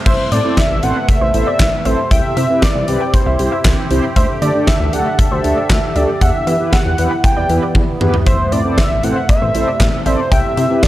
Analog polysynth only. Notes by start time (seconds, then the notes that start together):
0.32 C4 E4 A4 C5
0.44 C4 E4 A4 C5
0.83 C4 E4 A4 C5
1.34 C4 E4 A4 C5
1.86 C4 E4 A4 C5
2.37 C4 E4 G4 C5
2.50 C4 E4 G4 B4
2.88 C4 E4 G4 B4
3.39 C4 E4 G4 C5
3.91 C4 E4 G4 C5
4.42 A3 D4 G4 A4
4.55 A3 D4 G4 A4
4.93 A3 D4 G4 A4
5.44 A3 D4 G4 A4
5.96 A3 D4 G4 A4
6.47 B3 E4 G4 B4
6.60 B3 E4 G4 B4
6.98 B3 E4 G4 B4
7.50 B3 E4 G4 B4
8.01 B3 E4 G4 B4
8.52 C4 E4 A4 C5
8.65 C4 E4 A4 C5
9.03 C4 E4 A4 C5
9.55 C4 E4 A4 C5
10.06 C4 E4 A4 D5
10.57 C4 E4 G4 C5
10.70 C4 E4 G4 B4